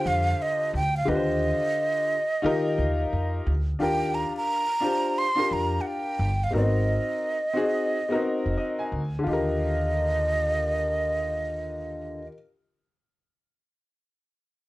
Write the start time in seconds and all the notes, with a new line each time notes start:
Already playing: D3 F4 G4 C5
0.06 F2 F5
0.42 D#5
0.74 D2 G5
0.97 F5
1.05 D#2 D3 F4 G4 B4 D#5
1.16 C5
2.42 D#3 D#4 F4 G4 A#4
2.78 D#2
3.13 F2
3.46 D2
3.79 D#2 D4 F4 G4 A#4 G5
4.14 A#5
4.37 A#5
4.80 D4 F4 G4 C5
5.18 C6
5.35 D4 F4 G4 A#4
5.51 F2 A#5
5.81 F#5
5.87 G5
6.19 G1
6.44 F5
6.51 G#1 B3 D#4 F#4 A#4
6.56 C4 D#5
7.53 C4 D#4 F#4 G#4
8.09 B3 D#4 F#4 A#4
8.15 C4
8.46 F1
8.57 D#5
8.79 G#5
8.92 D2
9.19 D3
9.24 D#2 F4
9.28 G4 D#5
9.33 A#4